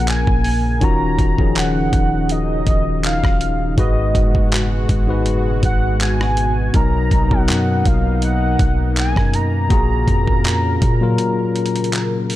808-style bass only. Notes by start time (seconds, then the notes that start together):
Already playing: A#1
0.27 A#1
0.82 D#1
1.19 D#1
1.93 D#1
2.67 D#1
3.24 D#1
3.78 G#1
4.15 F#1
4.89 G#1
5.26 F#1
5.63 G#1
6.74 B1
7.11 B1
7.49 F#2
7.86 B1
8.60 B1
9.16 F#2
9.70 A#1
10.08 F2
10.82 A#2